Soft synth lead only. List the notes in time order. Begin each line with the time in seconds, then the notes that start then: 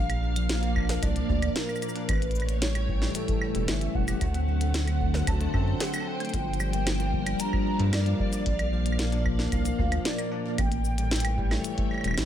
Already playing: F5
1.03 D5
1.56 A#4
2.09 B4
2.62 C#5
3.15 A4
3.68 E5
3.95 F#5
5.27 A5
5.80 F#5
6.00 A5
6.07 G5
7.40 A#5
7.93 D5
8.19 D5
9.52 F5
10.06 D5
10.58 G5